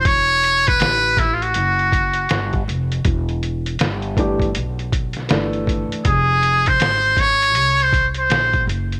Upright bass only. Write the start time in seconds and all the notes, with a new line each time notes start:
Already playing: E1
0.80 A1
1.56 F#1
2.31 G1
2.68 F1
3.05 E1
3.81 G1
4.56 B1
5.31 G1
5.92 muted upright bass stroke
6.05 F1
6.81 G#1
7.55 C2
8.30 A#1
8.67 F#1